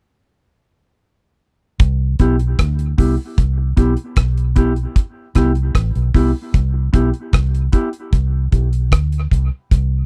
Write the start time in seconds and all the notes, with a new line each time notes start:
1.80 C2, kick, closed hi-hat
2.19 B1 B3 E4 G4, kick, closed hi-hat
2.39 closed hi-hat
2.59 D2, kick, cross-stick, closed hi-hat
2.79 closed hi-hat
2.98 C2 B3 E4 G4, kick, open hi-hat
3.38 C2, kick, closed hi-hat
3.58 muted clean electric guitar stroke
3.77 B1 B3 E4 G4, kick, closed hi-hat
3.97 closed hi-hat
4.16 B1, kick, cross-stick, closed hi-hat
4.38 closed hi-hat
4.56 B3 E4 G4, kick, closed hi-hat
4.76 closed hi-hat
4.96 kick, closed hi-hat
5.35 C2 B3 E4 G4, kick, cross-stick, closed hi-hat
5.55 closed hi-hat
5.75 A1, kick, cross-stick, closed hi-hat
5.95 B1, closed hi-hat
6.14 C2 B3 E4 G4, kick, open hi-hat
6.54 C2, kick, closed hi-hat
6.74 muted clean electric guitar stroke
6.93 B1 B3 E4 G4, kick, closed hi-hat
7.14 closed hi-hat
7.33 C2, kick, cross-stick, closed hi-hat
7.55 closed hi-hat
7.72 B3 E4 G4, kick, closed hi-hat
7.93 closed hi-hat
8.13 C2, kick, closed hi-hat
8.51 B1 B3 E4 G4, kick, closed hi-hat
8.73 closed hi-hat
8.92 D2, kick, cross-stick, closed hi-hat
9.12 closed hi-hat
9.31 C2 B3 E4 G4, kick, closed hi-hat
9.71 C2, kick, closed hi-hat
9.91 muted clean electric guitar stroke